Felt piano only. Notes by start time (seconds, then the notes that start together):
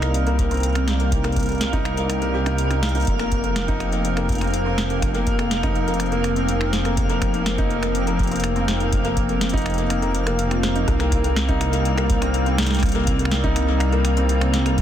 Already playing: A#3 C4 D#4
0.02 A#3
0.27 A#3
0.51 C4
0.75 C4
1.00 A#3
1.24 A#3
1.49 A#3
1.73 D#4
1.97 A#3
2.22 A#3
2.34 G4
2.46 D#4
2.71 D#4
2.95 D#4
3.19 A#3
3.44 A#3
3.68 D#4
3.93 A#3
4.17 A#3
4.41 C4
4.66 C4
4.90 A#3
5.15 A#3
5.39 A#3
5.63 D#4
5.88 A#3
6.12 A#3
6.36 C4
6.61 C4
6.85 A#3
7.10 A#3
7.34 A#3
7.58 D#4
7.83 A#3
8.07 A#3
8.31 C4
8.56 C4
8.80 A#3
9.05 A#3
9.29 A#3
9.53 D#4
9.78 A#3
10.02 A#3
10.27 A#3
10.51 F4
10.63 C5
10.75 D#4
11.00 A#3
11.24 A#3
11.49 D#4
11.73 A#3
11.97 A#3
12.22 C4
12.46 C4
12.70 A#3
12.95 A#3
13.19 A#3
13.44 D#4
13.68 A#3
13.93 A#3
14.17 C4
14.41 C4
14.66 A#3